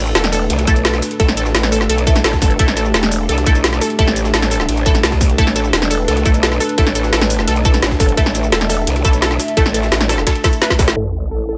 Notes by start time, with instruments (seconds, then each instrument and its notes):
Already playing: wobble bass A1, analog synth pad A3 D4 B4
0.06 cabasa
0.15 wobble bass E1, synth arpeggio sound A4, snare, closed hi-hat, ride
0.24 snare, closed hi-hat
0.33 synth arpeggio sound A4, open hi-hat, cabasa
0.50 wobble bass C2, closed hi-hat, ride
0.59 snare, closed hi-hat
0.67 wobble bass B1, synth stab A3 E4 A4, synth arpeggio sound A4, kick, closed hi-hat, ride, cabasa
0.76 closed hi-hat, cabasa
0.85 synth arpeggio sound A4, snare, closed hi-hat, ride
0.94 snare, ride
1.02 snare, open hi-hat, ride, cabasa
1.11 closed hi-hat
1.20 wobble bass A1, synth stab A3 E4 A4, synth arpeggio sound A4, kick, closed hi-hat, ride
1.28 snare
1.37 synth arpeggio sound A4, closed hi-hat, ride, cabasa
1.46 snare, cabasa
1.55 wobble bass A1, snare, closed hi-hat, ride
1.63 snare, closed hi-hat
1.72 synth arpeggio sound A4, open hi-hat, ride, cabasa
1.81 snare
1.89 wobble bass B1, synth arpeggio sound A4, closed hi-hat, ride
1.98 closed hi-hat
2.07 synth stab A3 E4 A4, kick, closed hi-hat, ride, cabasa
2.16 snare, closed hi-hat, ride, cabasa
2.24 wobble bass A1, synth arpeggio sound A4, snare, closed hi-hat, ride
2.33 kick, snare
2.42 wobble bass G1, synth arpeggio sound A4, kick, snare, open hi-hat, ride, cabasa
2.51 closed hi-hat
2.59 wobble bass A1, synth stab A3 E4 A4, analog synth pad G4, kick, closed hi-hat, ride
2.68 snare
2.77 synth arpeggio sound A4, snare, closed hi-hat, ride, cabasa
2.85 cabasa
2.94 wobble bass E1, synth arpeggio sound A4, snare, closed hi-hat, ride
3.03 snare, closed hi-hat
3.12 open hi-hat, cabasa
3.29 wobble bass C2, synth arpeggio sound A4, closed hi-hat, ride
3.38 snare, closed hi-hat
3.46 wobble bass B1, synth stab A3 E4 A4, synth arpeggio sound A4, kick, closed hi-hat, ride, cabasa
3.55 closed hi-hat, cabasa
3.64 snare, closed hi-hat, ride
3.73 snare, ride
3.81 synth arpeggio sound A4, snare, open hi-hat, ride, cabasa
3.90 closed hi-hat
3.99 wobble bass A1, synth stab A3 E4 A4, synth arpeggio sound A4, kick, closed hi-hat, ride
4.08 snare
4.16 closed hi-hat, ride, cabasa
4.25 snare, cabasa
4.34 wobble bass A1, synth arpeggio sound A4, snare, closed hi-hat, ride
4.42 snare, closed hi-hat
4.51 synth arpeggio sound A4, open hi-hat, ride, cabasa
4.60 snare
4.69 wobble bass A1, closed hi-hat, ride
4.77 closed hi-hat
4.86 synth stab A3 E4 A4, synth arpeggio sound A5, kick, closed hi-hat, ride, cabasa
4.95 snare, closed hi-hat, ride, cabasa
5.03 wobble bass C2, synth arpeggio sound A5, snare, closed hi-hat, ride
5.12 kick, snare
5.21 kick, snare, open hi-hat, ride, cabasa
5.30 closed hi-hat
5.38 wobble bass A1, synth stab A3 E4 A4, synth arpeggio sound A4, analog synth pad B4, kick, closed hi-hat, ride
5.47 snare
5.56 synth arpeggio sound A4, snare, closed hi-hat, ride, cabasa
5.64 cabasa
5.73 wobble bass E1, snare, closed hi-hat, ride
5.82 snare, closed hi-hat
5.91 synth arpeggio sound A4, open hi-hat, cabasa
6.08 wobble bass C2, synth arpeggio sound A4, closed hi-hat, ride
6.17 snare, closed hi-hat
6.25 wobble bass B1, synth stab A3 E4 A4, kick, closed hi-hat, ride, cabasa
6.34 closed hi-hat, cabasa
6.43 synth arpeggio sound A4, snare, closed hi-hat, ride
6.52 snare, ride
6.60 synth arpeggio sound A4, snare, open hi-hat, ride, cabasa
6.69 closed hi-hat
6.78 wobble bass A1, synth stab A3 E4 A4, kick, closed hi-hat, ride
6.87 snare
6.95 synth arpeggio sound A4, closed hi-hat, ride, cabasa
7.04 snare, cabasa
7.13 wobble bass A1, synth arpeggio sound A4, snare, closed hi-hat, ride
7.21 snare, closed hi-hat
7.30 open hi-hat, ride, cabasa
7.39 snare
7.48 wobble bass B1, synth arpeggio sound A4, closed hi-hat, ride
7.56 closed hi-hat
7.65 synth stab A3 E4 A4, synth arpeggio sound A4, kick, closed hi-hat, ride, cabasa
7.74 snare, closed hi-hat, ride, cabasa
7.82 wobble bass A1, snare, closed hi-hat, ride
7.91 kick, snare
8.00 wobble bass G1, synth arpeggio sound A4, kick, snare, open hi-hat, ride, cabasa
8.09 closed hi-hat
8.17 wobble bass A1, synth stab A3 E4 A4, synth arpeggio sound A4, analog synth pad E5, kick, closed hi-hat, ride
8.26 snare
8.35 snare, closed hi-hat, ride, cabasa
8.44 cabasa
8.52 wobble bass E1, synth arpeggio sound A4, snare, closed hi-hat, ride
8.61 snare, closed hi-hat
8.70 synth arpeggio sound A4, open hi-hat, cabasa
8.87 wobble bass C2, closed hi-hat, ride
8.96 snare, closed hi-hat
9.05 wobble bass B1, synth stab A3 E4 A4, synth arpeggio sound A4, kick, closed hi-hat, ride, cabasa
9.13 closed hi-hat, cabasa
9.22 synth arpeggio sound A4, snare, closed hi-hat, ride
9.31 snare, ride
9.40 snare, open hi-hat, ride, cabasa
9.48 closed hi-hat
9.57 wobble bass A1, synth stab A3 E4 A4, synth arpeggio sound A4, kick, closed hi-hat, ride
9.66 snare
9.74 synth arpeggio sound A4, closed hi-hat, ride, cabasa
9.83 snare, cabasa
9.92 wobble bass A1, snare, closed hi-hat, ride
10.01 snare, closed hi-hat
10.09 synth arpeggio sound A4, snare, open hi-hat, ride, cabasa
10.18 snare
10.27 synth arpeggio sound A4, kick, snare, closed hi-hat, ride
10.36 closed hi-hat
10.44 synth stab A3 E4 A4, kick, snare, closed hi-hat, open hi-hat, cabasa
10.53 closed hi-hat, cabasa
10.62 synth arpeggio sound B4, snare, closed hi-hat, ride
10.70 kick, snare
10.79 wobble bass A1, synth arpeggio sound A4, kick, snare, open hi-hat, ride, cabasa
10.88 snare, closed hi-hat, ride
10.96 wobble bass A1, synth stab A3 E4 A4, analog synth pad A3 E4, ambient pad E4, synth arpeggio sound A4, sub drop
11.10 ambient pad A4
11.31 synth arpeggio sound A4
11.39 ambient pad A5
11.49 synth arpeggio sound A4